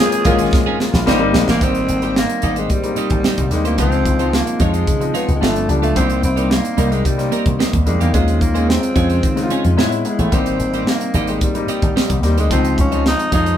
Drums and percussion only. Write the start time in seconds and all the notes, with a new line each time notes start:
0.12 closed hi-hat
0.25 kick, closed hi-hat
0.39 closed hi-hat
0.53 kick, snare
0.80 snare
0.94 snare
1.07 snare
1.34 snare
1.48 snare
1.61 kick, closed hi-hat
1.75 closed hi-hat
1.89 closed hi-hat
2.02 closed hi-hat
2.16 snare
2.29 closed hi-hat
2.42 closed hi-hat
2.56 closed hi-hat
2.70 kick, closed hi-hat
2.84 closed hi-hat
2.96 closed hi-hat
3.10 kick, closed hi-hat
3.24 snare
3.38 kick, closed hi-hat
3.51 snare, closed hi-hat
3.65 closed hi-hat
3.78 kick, closed hi-hat
3.92 closed hi-hat
4.05 kick, closed hi-hat
4.19 closed hi-hat
4.33 snare
4.47 closed hi-hat
4.60 kick, closed hi-hat
4.74 closed hi-hat
4.87 kick, closed hi-hat
5.01 closed hi-hat
5.15 closed hi-hat
5.29 closed hi-hat
5.43 snare
5.56 closed hi-hat
5.69 closed hi-hat
5.83 closed hi-hat
5.96 kick, closed hi-hat
6.10 closed hi-hat
6.23 closed hi-hat
6.37 closed hi-hat
6.51 snare
6.65 closed hi-hat
6.78 closed hi-hat
6.92 closed hi-hat
7.05 kick, closed hi-hat
7.19 snare, closed hi-hat
7.32 closed hi-hat
7.46 kick, closed hi-hat
7.60 snare
7.73 kick, closed hi-hat
7.87 closed hi-hat
8.01 closed hi-hat
8.14 kick, closed hi-hat
8.28 closed hi-hat
8.41 kick, closed hi-hat
8.55 closed hi-hat
8.70 snare
8.83 closed hi-hat
8.96 kick, closed hi-hat
9.10 closed hi-hat
9.23 kick, closed hi-hat
9.37 snare, closed hi-hat
9.50 closed hi-hat
9.64 closed hi-hat
9.79 snare
9.92 closed hi-hat
10.05 closed hi-hat
10.19 closed hi-hat
10.32 kick, closed hi-hat
10.46 closed hi-hat
10.60 closed hi-hat
10.73 closed hi-hat
10.87 snare
11.01 closed hi-hat
11.14 closed hi-hat
11.27 closed hi-hat
11.41 kick, closed hi-hat
11.55 closed hi-hat
11.68 closed hi-hat
11.82 kick, closed hi-hat
11.97 snare
12.10 kick, closed hi-hat
12.23 snare, closed hi-hat
12.38 closed hi-hat
12.51 kick, closed hi-hat
12.65 closed hi-hat
12.78 kick, closed hi-hat
12.92 closed hi-hat
13.06 snare
13.19 closed hi-hat
13.32 kick, closed hi-hat
13.46 closed hi-hat